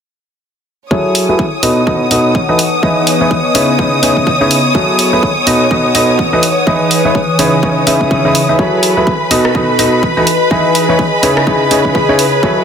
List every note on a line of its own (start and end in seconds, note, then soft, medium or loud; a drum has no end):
0.91 1.26 F#3 medium
0.91 1.26 E4 medium
0.91 1.63 E4 medium
0.91 1.26 F#4 medium
0.91 1.26 G#4 medium
0.91 1.26 A4 medium
0.91 8.60 C#5 medium
0.91 1.26 C#5 medium
0.91 8.60 D#6 medium
0.91 kick loud
1.10 2.03 A4 medium
1.10 1.63 G#5 medium
1.15 open hi-hat loud
1.25 1.42 F#3 medium
1.25 1.42 E4 medium
1.25 1.42 G#4 medium
1.25 1.42 B4 medium
1.25 2.99 F#5 medium
1.29 1.42 F#4 medium
1.29 1.42 A4 medium
1.39 kick loud
1.63 1.79 B2 medium
1.63 1.79 D#4 medium
1.63 2.59 D#4 medium
1.63 1.79 F#4 medium
1.63 1.79 A4 medium
1.63 1.79 B4 medium
1.63 1.79 D#5 loud
1.63 open hi-hat loud
1.77 4.03 B4 medium
1.87 2.03 B2 medium
1.87 2.03 D#4 medium
1.87 2.03 F#4 medium
1.87 2.03 A4 medium
1.87 2.03 B4 medium
1.87 2.03 D#5 medium
1.87 kick loud
2.07 2.35 B2 medium
2.07 2.35 D#4 medium
2.07 2.35 F#4 medium
2.07 2.35 A4 medium
2.07 2.35 B4 medium
2.07 2.35 D#5 medium
2.07 2.59 A5 medium
2.07 open hi-hat loud
2.35 kick loud
2.49 2.58 E3 medium
2.49 2.58 D#4 medium
2.49 2.58 F#4 medium
2.49 2.58 A4 medium
2.49 2.58 B4 medium
2.49 2.58 D#5 loud
2.59 5.47 B3 medium
2.59 open hi-hat medium
2.69 5.05 D#5 medium
2.83 3.18 E3 medium
2.83 3.18 D#4 medium
2.83 3.18 E4 medium
2.83 3.18 G#4 medium
2.83 3.18 B4 medium
2.83 3.18 D#5 medium
2.83 kick loud
3.03 4.03 G#5 medium
3.03 open hi-hat loud
3.21 3.34 E3 medium
3.21 3.34 D#4 medium
3.21 3.34 E4 medium
3.21 3.34 G#4 medium
3.21 3.34 B4 medium
3.21 3.34 C#5 medium
3.31 kick loud
3.55 3.71 C#3 medium
3.55 3.71 D#4 medium
3.55 3.71 E4 medium
3.55 3.71 G#4 medium
3.55 3.71 B4 medium
3.55 3.71 C#5 loud
3.55 open hi-hat loud
3.67 5.05 C#5 medium
3.79 3.95 C#3 medium
3.79 3.95 D#4 medium
3.79 3.95 E4 medium
3.79 3.95 G#4 medium
3.79 3.95 B4 medium
3.79 3.95 C#5 medium
3.79 kick loud
4.03 4.27 C#3 medium
4.03 4.27 D#4 medium
4.03 4.27 E4 medium
4.03 4.27 G#4 medium
4.03 4.27 B4 medium
4.03 4.27 C#5 medium
4.03 open hi-hat loud
4.10 5.05 B5 medium
4.17 kick medium
4.27 kick loud
4.41 4.54 C#3 medium
4.41 4.54 D#4 medium
4.41 4.54 E4 medium
4.41 4.54 G#4 medium
4.41 4.54 B4 medium
4.41 4.54 C#5 loud
4.51 open hi-hat loud
4.75 5.10 F#3 medium
4.75 5.10 E4 medium
4.75 5.10 F#4 medium
4.75 5.10 G#4 medium
4.75 5.10 A4 medium
4.75 5.10 C#5 medium
4.75 kick loud
4.91 5.87 A4 medium
4.91 5.47 G#5 medium
4.99 open hi-hat loud
5.09 6.83 F#5 medium
5.13 5.26 F#3 medium
5.13 5.26 E4 medium
5.13 5.26 F#4 medium
5.13 5.26 G#4 medium
5.13 5.26 A4 medium
5.13 5.26 B4 medium
5.23 kick loud
5.47 5.63 B2 medium
5.47 6.43 D#4 medium
5.47 5.63 D#4 medium
5.47 5.63 F#4 medium
5.47 5.63 A4 medium
5.47 5.63 B4 medium
5.47 5.63 D#5 loud
5.47 open hi-hat loud
5.53 7.87 B4 medium
5.71 5.87 B2 medium
5.71 5.87 D#4 medium
5.71 5.87 F#4 medium
5.71 5.87 A4 medium
5.71 5.87 B4 medium
5.71 5.87 D#5 medium
5.71 kick loud
5.91 6.19 D#4 medium
5.91 6.19 F#4 medium
5.91 6.19 A4 medium
5.91 6.19 B4 medium
5.91 6.19 D#5 medium
5.91 6.43 A5 medium
5.91 open hi-hat loud
5.95 6.19 B2 medium
6.19 kick loud
6.33 6.42 E3 medium
6.33 6.42 D#4 medium
6.33 6.42 F#4 medium
6.33 6.42 A4 medium
6.33 6.42 B4 medium
6.33 6.42 D#5 loud
6.43 8.89 E3 medium
6.43 open hi-hat loud
6.60 8.59 D#6 medium
6.67 7.02 E3 medium
6.67 7.02 D#4 medium
6.67 7.02 E4 medium
6.67 7.02 G#4 medium
6.67 7.02 B4 medium
6.67 7.02 D#5 medium
6.67 kick loud
6.87 7.87 G#5 medium
6.87 open hi-hat loud
7.05 7.18 E3 medium
7.05 7.18 D#4 medium
7.05 7.18 E4 medium
7.05 7.18 G#4 medium
7.05 7.18 B4 medium
7.05 7.18 C#5 medium
7.15 kick loud
7.39 7.55 C#3 medium
7.39 7.55 D#4 medium
7.39 7.55 E4 medium
7.39 7.55 G#4 medium
7.39 7.55 B4 medium
7.39 7.55 C#5 loud
7.39 open hi-hat loud
7.55 8.89 C#5 medium
7.63 7.79 C#3 medium
7.63 7.79 D#4 medium
7.63 7.79 E4 medium
7.63 7.79 G#4 medium
7.63 7.79 B4 medium
7.63 7.79 C#5 medium
7.63 kick loud
7.87 8.22 C#3 medium
7.87 8.22 D#4 medium
7.87 8.22 E4 medium
7.87 8.22 G#4 medium
7.87 8.22 B4 medium
7.87 8.22 E5 medium
7.87 open hi-hat loud
7.94 8.89 B5 medium
8.01 kick medium
8.11 kick loud
8.25 8.38 C#3 medium
8.25 8.38 D#4 medium
8.25 8.38 E4 medium
8.25 8.38 G#4 medium
8.25 8.38 B4 medium
8.25 8.38 E5 medium
8.35 open hi-hat loud
8.49 8.57 D#4 medium
8.49 8.57 E4 medium
8.49 8.57 G#4 medium
8.49 8.57 B4 medium
8.49 8.57 E5 medium
8.59 8.94 F#3 medium
8.59 8.94 E4 medium
8.59 10.67 F#4 medium
8.59 8.94 F#4 medium
8.59 8.94 G#4 medium
8.59 8.94 A4 medium
8.59 12.64 B4 medium
8.59 8.94 C#5 medium
8.59 12.64 B5 medium
8.59 kick loud
8.77 9.71 A4 medium
8.83 open hi-hat loud
8.97 9.10 F#3 medium
8.97 9.10 E4 medium
8.97 9.10 F#4 medium
8.97 9.10 G#4 medium
8.97 9.10 A4 medium
8.97 9.10 B4 medium
9.07 kick loud
9.31 9.47 B2 medium
9.31 9.47 D#4 medium
9.31 9.47 F#4 medium
9.31 9.47 A4 medium
9.31 9.47 B4 medium
9.31 9.47 D#5 loud
9.31 open hi-hat loud
9.45 cross-stick medium
9.51 9.71 B2 medium
9.51 9.71 D#4 medium
9.51 9.71 F#4 medium
9.51 9.71 A4 medium
9.51 11.71 B4 medium
9.51 9.71 B4 medium
9.51 9.71 D#5 medium
9.51 kick loud
9.66 12.43 D#5 medium
9.75 10.03 B2 medium
9.75 10.03 D#4 medium
9.75 10.03 F#4 medium
9.75 10.03 A4 medium
9.75 10.03 B4 medium
9.75 10.03 D#5 medium
9.75 10.27 A5 medium
9.75 open hi-hat loud
10.03 kick loud
10.17 10.26 E3 medium
10.17 10.26 D#4 medium
10.17 10.26 F#4 medium
10.17 10.26 A4 medium
10.17 10.26 B4 medium
10.17 10.26 D#5 loud
10.27 12.64 G#4 medium
10.27 open hi-hat loud
10.40 11.71 G#5 medium
10.51 10.86 E3 medium
10.51 10.86 D#4 medium
10.51 10.86 E4 medium
10.51 10.86 G#4 medium
10.51 10.86 B4 medium
10.51 10.86 D#5 medium
10.51 kick loud
10.75 open hi-hat loud
10.89 11.02 E3 medium
10.89 11.02 D#4 medium
10.89 11.02 E4 medium
10.89 11.02 G#4 medium
10.89 11.02 B4 medium
10.89 11.02 C#5 medium
10.99 kick loud
11.23 11.39 C#3 loud
11.23 11.39 D#4 medium
11.23 11.39 E4 medium
11.23 11.39 G#4 medium
11.23 11.39 B4 medium
11.23 11.39 C#5 loud
11.23 open hi-hat medium
11.37 cross-stick medium
11.46 11.63 C#3 medium
11.46 11.63 D#4 medium
11.46 11.63 E4 medium
11.46 11.63 G#4 medium
11.46 11.63 B4 medium
11.46 12.64 C#5 medium
11.46 11.63 C#5 medium
11.46 kick loud
11.60 12.64 B5 medium
11.71 11.95 C#3 medium
11.71 11.95 D#4 medium
11.71 11.95 E4 medium
11.71 11.95 G#4 medium
11.71 11.95 B4 medium
11.71 11.95 C#5 medium
11.71 open hi-hat loud
11.85 kick medium
11.95 kick loud
12.09 12.22 C#3 medium
12.09 12.22 D#4 medium
12.09 12.22 E4 medium
12.09 12.22 G#4 medium
12.09 12.22 B4 medium
12.09 12.22 C#5 loud
12.19 open hi-hat loud
12.43 12.64 F#3 medium
12.43 12.64 E4 medium
12.43 12.64 F#4 medium
12.43 12.64 G#4 medium
12.43 12.64 A4 medium
12.43 12.64 C#5 medium
12.43 kick loud
12.60 12.64 E5 medium